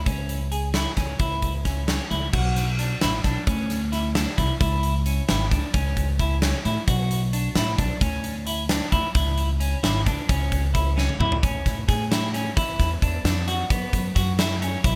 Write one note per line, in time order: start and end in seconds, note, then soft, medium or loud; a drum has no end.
0.06 0.84 C#2 medium
0.06 0.39 C#4 medium
0.06 kick medium
0.06 closed hi-hat medium
0.29 closed hi-hat soft
0.52 0.68 G#4 medium
0.52 closed hi-hat medium
0.74 0.91 E4 medium
0.74 snare medium
0.74 closed hi-hat medium
0.97 1.17 C#2 medium
0.97 1.13 C#4 medium
0.97 kick medium
0.97 snare soft
0.97 closed hi-hat medium
1.19 1.98 C#2 medium
1.19 1.53 E4 medium
1.19 kick loud
1.19 closed hi-hat medium
1.42 kick medium
1.42 closed hi-hat soft
1.65 1.81 C#4 medium
1.65 kick medium
1.65 snare soft
1.65 closed hi-hat soft
1.88 2.04 C#4 medium
1.88 snare medium
1.88 closed hi-hat medium
2.10 2.30 C#2 medium
2.10 2.27 E4 medium
2.10 closed hi-hat soft
2.33 2.92 B1 medium
2.33 2.66 F#4 medium
2.33 kick loud
2.33 crash medium
2.56 snare soft
2.56 closed hi-hat medium
2.79 2.95 D4 medium
2.79 snare soft
2.79 closed hi-hat medium
3.01 3.22 A1 medium
3.01 3.18 E4 medium
3.01 snare loud
3.01 closed hi-hat medium
3.24 3.34 B1 medium
3.24 3.40 D4 medium
3.24 kick medium
3.24 snare soft
3.24 closed hi-hat medium
3.47 4.25 D2 loud
3.47 3.80 C#4 medium
3.47 kick loud
3.47 closed hi-hat medium
3.70 snare soft
3.70 closed hi-hat medium
3.92 4.09 E4 medium
3.92 snare soft
3.92 closed hi-hat medium
4.15 4.31 D4 medium
4.15 snare loud
4.15 closed hi-hat medium
4.38 4.48 C2 medium
4.38 4.54 E4 medium
4.38 kick medium
4.38 closed hi-hat medium
4.60 5.19 C#2 loud
4.60 4.93 E4 medium
4.60 kick loud
4.60 closed hi-hat medium
4.83 closed hi-hat medium
5.06 5.22 C#4 medium
5.06 closed hi-hat medium
5.28 5.48 G#1 medium
5.28 5.45 E4 medium
5.28 snare loud
5.28 closed hi-hat medium
5.51 5.61 C#2 medium
5.51 5.68 D4 medium
5.51 kick medium
5.51 closed hi-hat medium
5.74 6.52 C#2 loud
5.74 6.06 C#4 medium
5.74 kick loud
5.74 closed hi-hat medium
5.97 kick medium
5.97 closed hi-hat medium
6.19 6.36 E4 medium
6.19 kick medium
6.19 closed hi-hat medium
6.42 6.58 C#4 medium
6.42 snare medium
6.42 closed hi-hat medium
6.65 6.75 A2 medium
6.65 6.81 E4 medium
6.65 closed hi-hat medium
6.88 7.46 B1 medium
6.88 7.20 F#4 medium
6.88 kick loud
6.88 closed hi-hat medium
7.11 closed hi-hat medium
7.33 7.50 D4 medium
7.33 closed hi-hat medium
7.55 7.75 A1 medium
7.55 7.72 E4 medium
7.55 snare loud
7.55 closed hi-hat medium
7.78 7.88 B1 medium
7.78 7.95 D4 medium
7.78 kick medium
7.78 closed hi-hat medium
8.01 8.79 D2 loud
8.01 8.34 C#4 medium
8.01 kick loud
8.01 closed hi-hat medium
8.24 closed hi-hat medium
8.47 8.63 E4 medium
8.47 closed hi-hat medium
8.69 8.86 D4 medium
8.69 snare loud
8.69 closed hi-hat medium
8.92 9.02 D2 medium
8.92 9.08 E4 medium
8.92 kick medium
8.92 closed hi-hat medium
9.15 9.73 C#2 loud
9.15 9.48 E4 medium
9.15 kick loud
9.15 closed hi-hat medium
9.38 closed hi-hat medium
9.60 9.77 C#4 medium
9.60 closed hi-hat medium
9.83 10.02 G#1 medium
9.83 10.00 E4 medium
9.83 snare loud
9.83 closed hi-hat medium
10.06 10.16 C#2 medium
10.06 10.22 D4 medium
10.06 kick medium
10.06 closed hi-hat medium
10.29 11.07 C#2 loud
10.29 10.61 C#4 medium
10.29 kick loud
10.29 closed hi-hat medium
10.52 kick medium
10.52 closed hi-hat medium
10.74 10.90 E4 medium
10.74 kick medium
10.74 closed hi-hat medium
10.97 11.13 C#4 medium
10.97 snare medium
11.09 high tom medium
11.20 11.29 A2 loud
11.20 11.36 E4 medium
11.20 mid tom medium
11.32 floor tom medium
11.43 11.53 A2 medium
11.43 11.75 C#4 medium
11.43 kick loud
11.43 closed hi-hat medium
11.66 11.85 A2 medium
11.66 kick medium
11.66 snare soft
11.66 closed hi-hat medium
11.88 12.47 A2 medium
11.88 12.04 G#4 medium
11.88 kick medium
11.88 snare soft
11.88 closed hi-hat medium
12.11 12.27 E4 medium
12.11 snare loud
12.11 closed hi-hat medium
12.34 12.50 C#4 medium
12.34 snare soft
12.34 closed hi-hat medium
12.57 12.76 E2 medium
12.57 12.89 E4 medium
12.57 kick loud
12.57 closed hi-hat medium
12.79 12.99 E2 medium
12.79 kick medium
12.79 snare soft
12.79 closed hi-hat medium
13.02 13.21 E2 loud
13.02 13.18 D4 medium
13.02 kick medium
13.02 closed hi-hat medium
13.24 13.63 F2 loud
13.24 13.41 D4 medium
13.24 snare loud
13.24 closed hi-hat medium
13.48 13.64 F#4 medium
13.48 closed hi-hat medium
13.70 13.80 F#2 medium
13.70 14.03 B3 medium
13.70 kick loud
13.70 closed hi-hat medium
13.93 14.12 F#2 medium
13.93 kick medium
13.93 closed hi-hat medium
14.15 14.74 F#2 medium
14.15 14.32 F#4 medium
14.15 kick medium
14.15 snare soft
14.15 closed hi-hat medium
14.39 14.55 E4 medium
14.39 snare loud
14.39 closed hi-hat medium
14.62 14.78 C#4 medium
14.62 closed hi-hat medium
14.84 14.96 B1 medium
14.84 14.96 E4 medium
14.84 kick loud
14.84 closed hi-hat medium